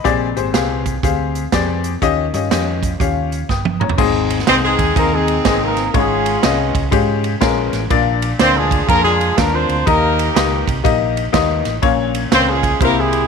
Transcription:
Already playing: D#5 B5
0.04 A#1 A#2 C4 G4 G#4 D5, kick, closed hi-hat
0.36 G#1 C4 G4 G#4 C5, closed hi-hat
0.53 C2 C4 G4 G#4 F5, snare, closed hi-hat
0.86 kick, closed hi-hat
1.03 D2 C4 G4 G#4 F5, kick, closed hi-hat
1.35 closed hi-hat
1.52 F2 C4 G4 G#4 D5, kick, snare, closed hi-hat
1.84 closed hi-hat
2.02 D#2 D#3 C#4 F4 G4 D#5, kick, closed hi-hat
2.33 G2 C#4 F4 G4 D#5, closed hi-hat
2.50 F2 C#4 F4 G4 D#5, snare, closed hi-hat
2.83 kick, closed hi-hat
3.00 D#2 C#4 F4 G4 F5, kick, closed hi-hat
3.32 closed hi-hat
3.49 G1 G5 D#6, kick, snare
3.65 high tom
3.80 C#5 A#5, mid tom
3.89 floor tom
3.98 G#1 G#2 C4 D#4 G#4 D#5, kick, crash
4.30 ride
4.39 snare
4.47 C2 C4 D#4 G#4 C5 D#5, snare, ride
4.64 G#3 C4 D#4 G#4
4.79 D#2, kick, ride
4.95 D#2 A#3 C4 D#4 G#4 A#4 D#5, kick, ride
5.13 G#3 C4 D#4 G#4
5.28 ride
5.45 G#1 G#3 C4 D#4 G#4 D#5, kick, snare, ride
5.62 A#3 D#4 A#4
5.76 snare, ride
5.94 G#1 G#2 G#3 C#4 F4 G#4 C#5, kick, ride
6.26 ride
6.43 C2 G#3 C#4 F4 D#5, snare, ride
6.75 C#2, kick, ride
6.91 G#2 G#3 C#4 F4 G4, kick, ride
7.24 ride
7.41 A#1 G#3 C#4 F4 A#4, kick, snare, ride
7.73 A1, snare, ride
7.90 A#1 A#2 A#3 D4 F4 D5, kick, ride
8.22 ride
8.39 D2 A#3 C4 D4 F4 C5 D5, snare, ride
8.56 G#3 D4 F4 G#4
8.71 kick, ride
8.88 F2 A#3 D4 F4 G#4 A#4, kick, ride
9.04 G#3 D4 F4 G#4
9.21 ride
9.37 D#2 A#3 D4 F4 A#4, kick, snare, ride
9.53 C4 F4 C5
9.69 D2, ride
9.86 D#2 D#3 A#3 D#4 G4 A#4 D#5, kick, ride
10.19 ride
10.35 C#2 A#3 D#4 G4 D#5, snare, ride
10.67 C2, kick, ride
10.84 A#1 A#3 D#4 G4 D#5, kick, ride
11.17 ride
11.33 D#2 A#3 D#4 G4 D#5, kick, snare, ride
11.65 A1, snare, ride
11.82 A#1 A#2 A#3 C#4 F4 C#5, kick, ride
12.15 ride
12.31 C#2 A#3 C4 C#4 F4 C5 C#5, snare, ride
12.49 G#3 C#4 F4 G#4
12.63 kick, ride
12.81 C2 C3 A#3 E4 G4 A#4 C5, kick, ride
12.98 G#3 E4 G#4
13.13 ride

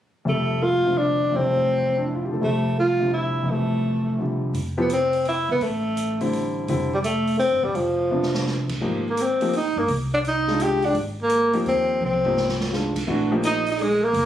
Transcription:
0.25 F2 C3 G3 A3
0.30 A3
0.63 F4
0.85 C3 D3 F3 G3
0.98 D4
1.32 F2 C3 E3 G3
1.36 A3 C4
1.87 C4
1.97 D4
2.05 E4
2.15 F4
2.25 G4
2.29 D3 F3 A3
2.33 A4
2.41 F2 C3 G3 A3
2.80 F4
3.00 C3 D3 F3 G3
3.14 E4
3.43 F2 C3
3.48 E3 G3 A3
3.54 A3
4.18 C3 D3 F3 G3
4.54 F1, open hi-hat
4.77 F3 B3 E4 G4
4.90 C4, closed hi-hat
5.13 open hi-hat
5.25 E4, open hi-hat
5.49 C2 B3
5.61 A1 A3, open hi-hat
5.97 closed hi-hat
6.21 D3 G3 C4 E4, open hi-hat
6.33 open hi-hat
6.68 F1 D3 G3 C4 E4, open hi-hat
6.94 G3
7.04 A3, closed hi-hat
7.27 open hi-hat
7.39 C4, open hi-hat
7.51 G1
7.63 E1 G3
7.74 F1 F3, open hi-hat
8.11 C3 F3 B3 D4
8.23 snare
8.34 snare
8.47 snare
8.69 kick, crash
8.81 G#1 F3 A#3 D#4 G4
9.10 A#3
9.17 closed hi-hat
9.21 C4
9.41 F3 A#3 D#4 G4, open hi-hat
9.53 D#4, open hi-hat
9.76 G1 A#3
9.88 C2, open hi-hat
10.14 D4
10.24 D#4, closed hi-hat
10.48 D#3 G#3 D4 F4, snare
10.60 G4, closed hi-hat
10.82 D4, open hi-hat
10.95 G#1, open hi-hat
11.23 A#3
11.30 closed hi-hat
11.53 F3 A#3 D#4 G4, open hi-hat
11.65 D#2 C4, open hi-hat
12.01 C2, high tom
12.05 C4
12.13 high tom
12.25 F3 A#3 D#4 G4, floor tom
12.37 snare
12.49 snare
12.60 snare
12.73 D#3 G#3 D4 F4, snare
12.96 kick, crash
13.07 A#1 E3 A3 D4 F#4
13.32 F3 A#3 D#4 G4
13.43 D#4 D#5, closed hi-hat
13.66 D#5, open hi-hat
13.71 D#4
13.78 G#4, open hi-hat
13.83 G#3
14.02 A#3 A#4
14.13 F1, open hi-hat

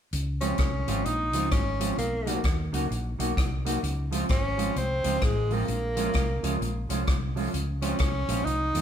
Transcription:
0.13 C#2, closed hi-hat
0.41 F3 G#3 C4 C#4 F4, closed hi-hat
0.58 C2, kick, cross-stick, closed hi-hat
0.87 G#1 F3 G#3 C4 F4, closed hi-hat
1.05 A#1 D#4, closed hi-hat
1.33 C#2 F3 G#3 C4 F4, closed hi-hat
1.51 G#1 C#4, kick, cross-stick, closed hi-hat
1.80 F3 G#3 C4 F4, closed hi-hat
1.97 B1 A#3, closed hi-hat
2.26 F#3 A#3 D#4 F#4, closed hi-hat
2.44 D#2, kick, cross-stick, closed hi-hat
2.72 C#2 F#3 A#3 D#4 F#4, closed hi-hat
2.91 A#1, closed hi-hat
3.19 B1 F#3 A#3 D#4 F#4, closed hi-hat
3.37 C2, kick, cross-stick, closed hi-hat
3.65 F#3 A#3 D#4 F#4, closed hi-hat
3.83 C#2, closed hi-hat
4.11 F3 G#3 C4 F4, closed hi-hat
4.29 G#1 C#4, kick, cross-stick, closed hi-hat
4.57 F3 G#3 C4 F4, closed hi-hat
4.76 C2 C4, closed hi-hat
5.04 C#2 F3 G#3 C4 F4, closed hi-hat
5.22 A1 G#3, kick, cross-stick, closed hi-hat
5.50 F3 G#3 A#3 C4 F4, open hi-hat
5.68 A#1, closed hi-hat
5.96 F3 G#3 C#4 F4, closed hi-hat
6.13 C2, kick, cross-stick, closed hi-hat
6.43 C#2 F3 G#3 C#4 F4, closed hi-hat
6.61 A#1, closed hi-hat
6.89 C2 F3 G#3 C#4 F4, closed hi-hat
7.07 C2, kick, cross-stick, closed hi-hat
7.36 F3 G#3 C#4 F4, open hi-hat
7.54 C#2, closed hi-hat
7.81 F3 G#3 C4 C#4 F4, closed hi-hat
7.99 C2, kick, cross-stick, closed hi-hat
8.28 A#1 F3 G#3 C4 F4, closed hi-hat
8.45 C2 D#4, closed hi-hat
8.74 D#2 F3 G#3 C4 F4, closed hi-hat

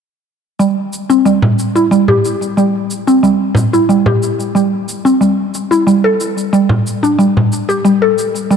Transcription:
0.59 G3, shaker
0.93 shaker
1.10 C4, shaker
1.25 G3, shaker
1.42 frame drum
1.59 shaker
1.76 E4, shaker
1.91 G3, shaker
2.08 G4, frame drum
2.25 shaker
2.42 shaker
2.57 G3, shaker
2.91 shaker
3.07 C4, shaker
3.23 G3, shaker
3.55 frame drum, shaker
3.73 E4, shaker
3.89 G3, shaker
4.06 G4, frame drum
4.23 shaker
4.40 shaker
4.55 G3, shaker
4.89 shaker
5.05 C4, shaker
5.21 G3, shaker
5.55 shaker
5.71 E4, shaker
5.87 G3, shaker
6.04 A4
6.21 shaker
6.38 shaker
6.53 G3, shaker
6.69 frame drum
6.87 shaker
7.03 D4, shaker
7.19 G3, shaker
7.37 frame drum
7.53 shaker
7.69 G4, shaker
7.85 G3, shaker
8.02 A4
8.18 shaker
8.36 shaker
8.51 G3, shaker

